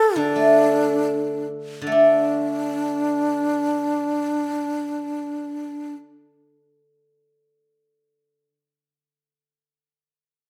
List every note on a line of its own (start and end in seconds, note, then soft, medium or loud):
0.00 0.19 A4 medium
0.16 1.80 D3 soft
0.16 1.46 D4 medium
0.36 1.85 A3 soft
1.81 8.44 D3 soft
1.87 7.52 A3 soft
1.92 6.68 D4 soft
1.96 5.95 D4 medium